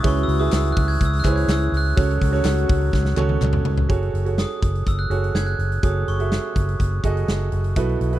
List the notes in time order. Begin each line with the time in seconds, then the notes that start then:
0.03 C#2 C#3 F#3 E4 F#4 G#4 B4 C#5 C#6, kick, hi-hat pedal, open hi-hat
0.16 hi-hat pedal
0.23 E6
0.28 C#2, hi-hat pedal, open hi-hat
0.39 E4 G#4 B4 E5 D#6, open hi-hat
0.52 C#2 E6, snare, clap, hi-hat pedal, open hi-hat
0.65 hi-hat pedal, open hi-hat
0.72 F#6
0.77 C#2, kick, hi-hat pedal, open hi-hat
0.88 G#6, hi-hat pedal, open hi-hat
1.01 C#2, kick, hi-hat pedal, open hi-hat
1.05 E6
1.13 hi-hat pedal, open hi-hat
1.20 F#6
1.24 C#2 E3 E4 G#4 B4 C5, kick, clap, hi-hat pedal, open hi-hat
1.31 C#5
1.36 G#6, hi-hat pedal, open hi-hat
1.48 C#2, snare, clap, hi-hat pedal, open hi-hat
1.52 E6
1.61 hi-hat pedal
1.72 C#2, hi-hat pedal, open hi-hat
1.77 F#6
1.86 open hi-hat
1.96 C#2 C#3 F#3 C#4 F#4 A4 C#5, kick, hi-hat pedal, open hi-hat
2.10 hi-hat pedal
2.21 C#2, kick, hi-hat pedal, open hi-hat
2.32 C#4 F#4 A4 C#5, snare, open hi-hat
2.44 C#2, snare, clap, hi-hat pedal, open hi-hat
2.57 hi-hat pedal
2.69 C#2, kick, hi-hat pedal, open hi-hat
2.81 open hi-hat
2.93 C#2, kick, snare
3.05 snare
3.17 C#2 C#4 F#4 A4 C#5, clap, high tom
3.29 high tom
3.41 C#2, clap, mid tom
3.53 mid tom
3.65 C#2, floor tom
3.78 floor tom
3.89 F#1 F#4 G#4 A4 C#5, kick, closed hi-hat
4.02 closed hi-hat
4.13 F#1, closed hi-hat
4.25 F#4 G#4 A4 C#5, closed hi-hat
4.38 D#6, snare
4.50 closed hi-hat
4.63 F#1, kick, closed hi-hat
4.75 closed hi-hat
4.86 F#1 E6, kick, closed hi-hat
4.99 F#6
5.10 F#1 F#4 G#4 A4 C#5, closed hi-hat
5.24 closed hi-hat
5.34 F#1 G#6, snare
5.47 F#6, closed hi-hat
5.59 F#1, closed hi-hat
5.72 closed hi-hat
5.83 F#1 F#4 G#4 A4 C#5 D#6, kick, closed hi-hat
6.08 F#1 C#6, closed hi-hat
6.19 F#4 G#4 A4 E5, closed hi-hat
6.32 snare
6.56 F#1, kick, closed hi-hat
6.69 closed hi-hat
6.80 F#1, kick, closed hi-hat
7.03 F#1 F#4 G#4 A4 D#5, kick, closed hi-hat
7.17 closed hi-hat
7.28 F#1, snare
7.40 closed hi-hat
7.52 F#1, closed hi-hat
7.64 closed hi-hat
7.76 B1 B2 E4 F#4 A4 B4, kick, closed hi-hat
7.89 closed hi-hat
8.01 B1, closed hi-hat
8.13 E4 F#4 A4 B4, closed hi-hat